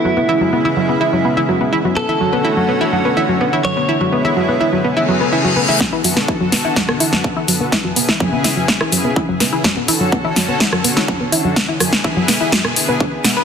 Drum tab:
HH |----------------|----------------|----------------|--o---o---o---o-|
SD |----------------|----------------|----------------|o--o--o-or-o----|
BD |----------------|----------------|----------------|o---o---o---o---|

HH |--o---o---o---o-|--o---o---o---o-|--o---o---o---o-|
SD |o--o--o-or----o-|o-----o-or-o----|o-ro--o-or----o-|
BD |o--oo---o---o---|o---o---o---o---|o--oo---o---o---|